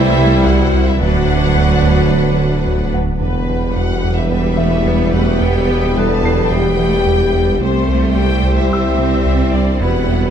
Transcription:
Already playing: tuba C2, double bass section C2, sub bass C2, trombone section E3 G3, ambient pad G3 C4 E4 E5, viola section G3 E4, cello section A3, french horn section E4, violin section C5 E5, grand piano A5
0.18 analog synth bass C3
0.46 analog synth bass C2, cello section G3, french horn section F#4, violin section F#5
0.74 analog synth bass C2
0.87 french horn section E4, violin section E5
0.99 sub bass D1, tuba D2, analog synth bass D2, double bass section D2, ambient pad F#3 B3 D4 B4, trombone section F#3 B3, cello section F#3, viola section F#3 D4, french horn section F#4, violin section B4 F#5
1.28 analog synth bass D2
1.56 analog synth bass D2
1.83 analog synth bass D2
2.11 analog synth bass D2
2.38 analog synth bass D3
2.66 analog synth bass D2
2.94 analog synth bass D2, grand piano F#5
3.20 sub bass E1, tuba E1, double bass section E2, analog synth bass E2, viola section G3 G4, trombone section G3 B3, ambient pad G3 B3 E4 E5, french horn section B3, violin section B4
3.49 analog synth bass E2
3.75 analog synth bass E2, french horn section F#4, violin section F#5
4.04 analog synth bass E2
4.17 french horn section E4, violin section E5
4.30 analog synth bass E2, cello section G3, french horn section E4, violin section E5
4.56 analog synth bass E3, cello section A3, grand piano E5
4.86 analog synth bass E2, cello section B3
5.13 analog synth bass E2, cello section A3, french horn section F#4, violin section F#5
5.40 analog synth bass E2, cello section B3, french horn section G4, violin section G5
5.68 analog synth bass E2
5.95 analog synth bass E2, cello section G3, french horn section A4, violin section A5, grand piano F#6
6.23 analog synth bass E2, cello section F#3, grand piano C7
6.50 analog synth bass E2, cello section E3, french horn section G4, violin section G5
6.78 analog synth bass E3, cello section A3
7.06 analog synth bass E2, cello section G3
7.34 analog synth bass E2
7.60 analog synth bass C2, sub bass C2, tuba C2, double bass section C2, ambient pad G3 C4 E4 E5, trombone section G3 C4, viola section G3 G4, cello section A3, french horn section C4, violin section C5
7.88 analog synth bass C2
8.14 analog synth bass C2, french horn section G4, violin section G5
8.43 analog synth bass C2
8.57 french horn section E4, violin section E5
8.71 analog synth bass C2, cello section G3, french horn section E4, violin section E5, grand piano E6
8.98 analog synth bass C3, cello section C4
9.26 analog synth bass C2
9.52 analog synth bass C2, french horn section D4, violin section D5
9.80 sub bass E1, tuba E1, analog synth bass E2, double bass section E2, ambient pad B3, trombone section B3, cello section B3, viola section E4, french horn section F#4, grand piano B4 B5, violin section B4 F#5
10.08 analog synth bass E2

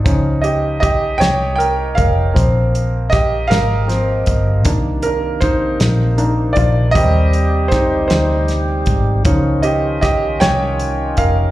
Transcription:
0.04 fingered electric bass C#2, grand piano F3 C#4 D#4, kick, closed hi-hat
0.42 grand piano G4 D#5, closed hi-hat
0.80 grand piano G4 D#5, kick, closed hi-hat
1.18 fingered electric bass C2, grand piano C#5 G5, closed hi-hat
1.22 snare
1.56 grand piano A#4 G5
1.60 closed hi-hat
1.95 fingered electric bass F1, grand piano A#4 F5, kick, closed hi-hat
2.33 fingered electric bass A#1, grand piano F3 A#3 C4, kick, closed hi-hat
2.75 closed hi-hat
3.10 grand piano G4 D#5, kick, snare, closed hi-hat
3.47 fingered electric bass G#1, grand piano A#4 F5, closed hi-hat
3.52 snare
3.87 grand piano F3 A#3 C4, snare, closed hi-hat
4.26 fingered electric bass G1, kick, closed hi-hat
4.64 fingered electric bass C2, tonewheel organ C3 D#3 A#3, grand piano D#3 A#3 D4, kick, closed hi-hat
5.02 grand piano D4 A#4, closed hi-hat
5.41 grand piano D#4 C5, kick, closed hi-hat
5.80 fingered electric bass A#1, snare, closed hi-hat
6.17 grand piano D#3 A#3 D4, closed hi-hat
6.53 grand piano F4 D5, closed hi-hat
6.57 fingered electric bass A#1, kick
6.91 fingered electric bass D#2, tonewheel organ C3 G3, grand piano G3 A#3 C4 D#5, closed hi-hat
6.95 grand piano G4, tonewheel organ G4, kick
7.33 closed hi-hat
7.68 grand piano D#4 C5, kick, closed hi-hat
7.73 snare
8.08 fingered electric bass D2, grand piano D#4 C5, snare, closed hi-hat
8.48 snare, closed hi-hat
8.86 fingered electric bass G#1, kick, closed hi-hat
9.25 fingered electric bass C#2, tonewheel organ D#3 C#4 F4, grand piano F3 C#4 D#4, kick, closed hi-hat
9.62 grand piano G4 D#5, closed hi-hat
10.01 grand piano G4 D#5, kick, snare, closed hi-hat
10.40 fingered electric bass C2, grand piano C#5 G5, snare, closed hi-hat
10.80 closed hi-hat
11.17 fingered electric bass F1, grand piano A#4 F5, kick, closed hi-hat

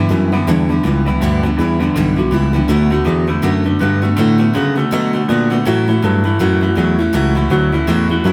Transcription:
0.09 tine electric piano F#2, clean electric guitar G2 E3, steel-string acoustic guitar E3 G3 B3 E4
0.32 tine electric piano F#2, clean electric guitar G2 D3 B3, steel-string acoustic guitar E3 G3 B3 E4
0.47 tine electric piano E2, steel-string acoustic guitar G2 D3 E3 G3 B3 E4, clean electric guitar G2 D3 D4
0.69 tine electric piano E2, clean electric guitar G2 D3, steel-string acoustic guitar E3 G3 B3 E4
0.83 tine electric piano C#2, clean electric guitar G2 E3, steel-string acoustic guitar E3 G3 B3 E4
1.05 tine electric piano C#2, clean electric guitar G2 D3 E4, steel-string acoustic guitar E3 G3 B3 E4
1.21 tine electric piano D2, clean electric guitar G2 D3, steel-string acoustic guitar G2 D3 E3 G3 B3 E4
1.43 tine electric piano D2, clean electric guitar G2 D3 D4, steel-string acoustic guitar E3 G3 B3 E4
1.57 tine electric piano E2, clean electric guitar G2 E3 E4, steel-string acoustic guitar E3 G3 B3
1.62 steel-string acoustic guitar E4
1.79 tine electric piano E2, clean electric guitar G2 D3 D4, steel-string acoustic guitar G3 B3 E4
1.84 steel-string acoustic guitar E3
1.94 tine electric piano B1, clean electric guitar G2 D3, steel-string acoustic guitar G2 D3 E3 G3 B3 E4
2.16 tine electric piano B1, clean electric guitar G2 D3 F#4, steel-string acoustic guitar E3 G3 B3 E4
2.31 tine electric piano C#2, clean electric guitar G2 E3 E4, steel-string acoustic guitar E3 G3 B3 E4
2.53 tine electric piano C#2, clean electric guitar G2 D3 D4, steel-string acoustic guitar E3 G3 B3 E4
2.68 tine electric piano D2, steel-string acoustic guitar D3 F#3 A3 B3 F#4, clean electric guitar D3 A3 E4
2.90 tine electric piano D2, clean electric guitar D3 A3 F#4, steel-string acoustic guitar A3 B3 F#4
3.05 tine electric piano E2, clean electric guitar D3 B3, steel-string acoustic guitar F#3 A3 B3 F#4
3.27 tine electric piano E2, clean electric guitar D3 A3 E4, steel-string acoustic guitar A3 B3 F#4
3.42 tine electric piano F#2, steel-string acoustic guitar D3 F#3 A3 B3 F#4, clean electric guitar D3 A3 D4
3.64 tine electric piano F#2, clean electric guitar D3 A3, steel-string acoustic guitar A3 B3 F#4
3.79 tine electric piano G2, clean electric guitar D3 B3 D4, steel-string acoustic guitar F#3 A3 B3 F#4
4.02 tine electric piano G2, clean electric guitar D3 A3, steel-string acoustic guitar A3 B3 F#4
4.16 tine electric piano A2, clean electric guitar D3 A3, steel-string acoustic guitar D3 F#3 A3 B3 F#4
4.38 tine electric piano A2, clean electric guitar D3 A3, steel-string acoustic guitar A3 B3 F#4
4.54 tine electric piano C#3, clean electric guitar D3 B3, steel-string acoustic guitar F#3 A3 B3 F#4
4.76 tine electric piano C#3, clean electric guitar D3 A3, steel-string acoustic guitar A3 B3 F#4
4.91 tine electric piano B2, steel-string acoustic guitar D3 F#3 A3 B3 F#4, clean electric guitar D3 A3
5.13 tine electric piano B2, clean electric guitar D3 A3, steel-string acoustic guitar A3 B3 F#4
5.28 tine electric piano A#2, clean electric guitar D3 B3, steel-string acoustic guitar F#3 A3 B3 F#4
5.50 tine electric piano A#2, clean electric guitar D3 A3, steel-string acoustic guitar A3 B3 F#4
5.65 steel-string acoustic guitar A2 F#3 A3 C#4 E4, clean electric guitar A2 E3 F#4, tine electric piano A2
5.88 clean electric guitar A2 E3, tine electric piano A2, steel-string acoustic guitar A3 C#4 E4
6.02 tine electric piano G2, clean electric guitar A2 F#3 A4, steel-string acoustic guitar F#3 A3 C#4 E4
6.24 tine electric piano G2, clean electric guitar A2 E3, steel-string acoustic guitar A3 C#4 E4
6.39 tine electric piano F#2, steel-string acoustic guitar A2 F#3 A3 C#4 E4, clean electric guitar A2 E3 F#4
6.61 tine electric piano F#2, clean electric guitar A2 E3, steel-string acoustic guitar A3 C#4 E4
6.76 tine electric piano E2, clean electric guitar A2 F#3 F#4, steel-string acoustic guitar F#3 A3 C#4 E4
6.99 tine electric piano E2, clean electric guitar A2 E3 E4, steel-string acoustic guitar A3 C#4 E4
7.13 tine electric piano C#2, steel-string acoustic guitar A2 F#3 A3 C#4 E4, clean electric guitar A2 E3 F#4
7.35 tine electric piano C#2, clean electric guitar A2 E3, steel-string acoustic guitar A3 C#4 E4
7.50 tine electric piano D2, clean electric guitar A2 F#3 F#4, steel-string acoustic guitar F#3 A3 C#4 E4
7.72 tine electric piano D2, clean electric guitar A2 E3 E4, steel-string acoustic guitar A3 C#4 E4
7.87 tine electric piano E2, steel-string acoustic guitar A2 F#3 A3 C#4 E4, clean electric guitar A2 E3 F#4
8.09 tine electric piano E2, clean electric guitar A2 E3, steel-string acoustic guitar A3 C#4 E4
8.24 tine electric piano F#2, clean electric guitar A2 F#3 E4, steel-string acoustic guitar F#3 A3 C#4 E4

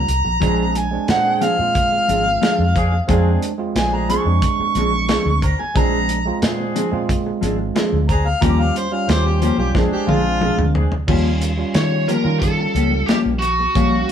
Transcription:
Already playing: harmonica A#5
0.08 fingered electric bass C2, muted clean electric guitar stroke, closed hi-hat
0.25 fingered electric bass A#1, muted clean electric guitar stroke
0.40 fingered electric bass A#1, clean electric guitar F3 C4 D4 G#4, tine electric piano G#3 C4 D4, horn section C4 D4 G#4, kick, closed hi-hat
0.75 harmonica G#5, muted clean electric guitar stroke, closed hi-hat
0.91 tine electric piano G#3 C4 D4
1.08 fingered electric bass A#2, horn section C4 D4 G#4, harmonica F#5, muted clean electric guitar stroke, snare, closed hi-hat
1.25 muted clean electric guitar stroke
1.41 clean electric guitar F3 C4 D4 G#4, harmonica F5, closed hi-hat
1.59 fingered electric bass A#2, tine electric piano G#3 C4 F4, muted clean electric guitar stroke
1.75 kick, closed hi-hat
1.92 muted clean electric guitar stroke
2.08 fingered electric bass G#1, clean electric guitar F3 C4 D4 G#4, closed hi-hat
2.26 muted clean electric guitar stroke
2.41 clean electric guitar F3 C4 D4 G#4, snare, closed hi-hat
2.59 fingered electric bass F2
2.75 horn section C4 D4 G#4, muted clean electric guitar stroke, kick, closed hi-hat
2.92 muted clean electric guitar stroke
3.07 fingered electric bass F2, clean electric guitar F3 C4 D4 G#4, tine electric piano G#3 C4 D4, horn section C4 D4 G#4, kick, closed hi-hat
3.41 muted clean electric guitar stroke, closed hi-hat
3.58 tine electric piano G#3 C4 F4
3.74 fingered electric bass A#1, horn section C4 D4 G#4, harmonica G#5, muted clean electric guitar stroke, snare, closed hi-hat
3.93 harmonica A#5, muted clean electric guitar stroke
4.09 clean electric guitar F3 C4 D4 G#4, harmonica C#6, closed hi-hat
4.25 fingered electric bass F2, tine electric piano G#3 C4 D4, muted clean electric guitar stroke
4.42 kick, closed hi-hat
4.60 muted fingered electric bass stroke, muted clean electric guitar stroke
4.75 fingered electric bass A#1, clean electric guitar F3 C4 D4 G#4, closed hi-hat
4.93 muted clean electric guitar stroke
5.08 clean electric guitar F3 C4 D4 G#4, snare, closed hi-hat
5.26 fingered electric bass D2
5.42 horn section C4 D4 A#4, harmonica A#5, muted clean electric guitar stroke, kick, closed hi-hat
5.59 harmonica G#5, muted clean electric guitar stroke
5.75 fingered electric bass A#1, clean electric guitar F3 C4 D4 G#4, tine electric piano G#3 C4 D4, horn section C4 D4 G#4, harmonica A#5, kick, closed hi-hat
6.09 muted clean electric guitar stroke, closed hi-hat
6.25 tine electric piano G#3 C4 F4
6.42 fingered electric bass A#2, horn section C4 D4 G#4, muted clean electric guitar stroke, snare, closed hi-hat
6.60 muted clean electric guitar stroke
6.75 clean electric guitar F3 C4 D4 G#4, closed hi-hat
6.92 fingered electric bass A#2, tine electric piano G#3 C4 F4, muted clean electric guitar stroke
7.09 kick, closed hi-hat
7.27 muted clean electric guitar stroke
7.41 fingered electric bass G#1, clean electric guitar F3 C4 D4 G#4, closed hi-hat
7.59 muted clean electric guitar stroke
7.75 clean electric guitar F3 C4 D4 G#4, snare, closed hi-hat
7.92 fingered electric bass D2
8.08 horn section C4 D4 G#4, harmonica A#5, muted clean electric guitar stroke, kick, closed hi-hat
8.25 harmonica F5, muted clean electric guitar stroke
8.41 fingered electric bass D#2, clean electric guitar F3 A#3 C#4 G4, tine electric piano G3 C#4 F4, horn section C#4 F4 G4, harmonica A#5, kick, closed hi-hat
8.60 harmonica F5
8.74 harmonica C5, muted clean electric guitar stroke, closed hi-hat
8.92 tine electric piano G3 C#4 F4, harmonica F5
9.07 fingered electric bass D#2, horn section C#4 F4 G4, harmonica C5, muted clean electric guitar stroke, snare, closed hi-hat
9.26 harmonica G4, muted clean electric guitar stroke
9.42 clean electric guitar F3 A#3 C#4 G4, harmonica C5, closed hi-hat
9.58 fingered electric bass B1, tine electric piano G3 C#4 F4, harmonica G4, muted clean electric guitar stroke
9.74 fingered electric bass A#1, clean electric guitar F3 C4 D4 G#4, tine electric piano G#3 C4 D4, horn section C4 D4 G#4, kick, snare
9.92 harmonica G4, muted clean electric guitar stroke
10.07 fingered electric bass A#1, clean electric guitar F3 C4 D4 G#4, harmonica F4, high tom
10.24 muted clean electric guitar stroke
10.41 clean electric guitar F3 C4 D4 G#4, mid tom
10.58 fingered electric bass D2, mid tom
10.75 horn section C4 D4 G#4, muted clean electric guitar stroke, floor tom
10.92 muted clean electric guitar stroke, floor tom
11.08 fingered electric bass D#2, clean electric guitar F3 A#3 C#4 G4, tine electric piano G3 C#4 F4, kick, crash
11.41 muted clean electric guitar stroke, closed hi-hat
11.57 tine electric piano G3 C#4 F4
11.74 fingered electric bass D#3, lead electric guitar C#5, muted clean electric guitar stroke, snare, closed hi-hat
11.92 muted clean electric guitar stroke
12.08 clean electric guitar F3 A#3 C#4 G4, lead electric guitar A#4, closed hi-hat
12.24 fingered electric bass D#3, tine electric piano G3 C#4 F4, muted clean electric guitar stroke
12.40 lead electric guitar A4, kick, closed hi-hat
12.59 muted clean electric guitar stroke
12.75 fingered electric bass C#2, clean electric guitar F3 A#3 C#4 G4, closed hi-hat
12.93 muted clean electric guitar stroke
13.06 clean electric guitar F3 A#3 C#4, lead electric guitar G4, snare, closed hi-hat
13.10 clean electric guitar G4
13.26 fingered electric bass A#1
13.39 lead electric guitar F#4, muted clean electric guitar stroke, closed hi-hat
13.59 muted clean electric guitar stroke
13.75 fingered electric bass A#1, clean electric guitar F3 A#3 C#4 G4, tine electric piano G3 C#4 F5, kick, closed hi-hat
14.08 muted clean electric guitar stroke

